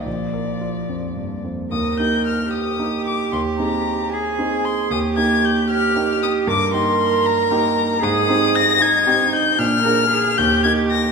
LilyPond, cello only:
\new Staff \with { instrumentName = "Cello" } { \time 6/8 \key ees \major \tempo 4. = 76 f2~ f8 r8 | bes'4. g'4.~ | g'4. aes'4. | g'4. g'4. |
bes'2. | aes'4. ees'4. | d'8 bes'8 aes'8 g'4. | }